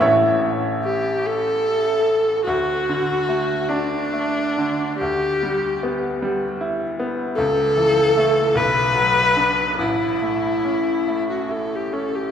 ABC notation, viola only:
X:1
M:6/8
L:1/16
Q:3/8=49
K:D
V:1 name="Viola"
z4 G2 A6 | F6 D6 | G4 z8 | A6 B6 |
E6- E F A G A G |]